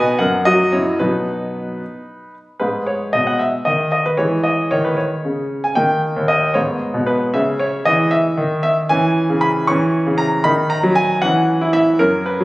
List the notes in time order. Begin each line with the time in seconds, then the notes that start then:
Already playing: B2 B3 D#4 F#4 B4 D#5 G#5
0.19 F#2 A#4 F#5
0.45 F#3 F#4 D#5
0.72 F#2 E4 C#5
0.99 B2 F#3 B3 D#4 B4
2.60 G#2 G#3 B4
2.86 C#5
3.13 B2 D#5
3.27 F#5
3.39 E5
3.65 D#3 D#5
3.92 D#5
4.06 B4
4.17 E3 G#3 C#5
4.44 D#5
4.71 D#3 C#5
4.85 B4
4.97 C#5
5.25 C#3
5.64 G#5
5.75 D#3 A#3 G5
6.16 D#2
6.28 D#5
6.54 G#2 B3 C#5
6.94 B2
7.07 B4
7.34 C#3 C#4 E5
7.59 C#5
7.85 E3 D#5
8.11 E5
8.37 D#3
8.63 E5
8.89 E3 C#4 G#5
9.29 C#3
9.41 B5
9.67 E3 C#4 C#6
10.06 C#3
10.18 A#5
10.44 D#3 D#4 B5
10.70 A#5
10.83 F#3
10.95 G#5
11.22 E3 C#4 F#5
11.61 E4
11.73 E5
11.99 F#2 C#4 A#4
12.26 B4
12.40 F#3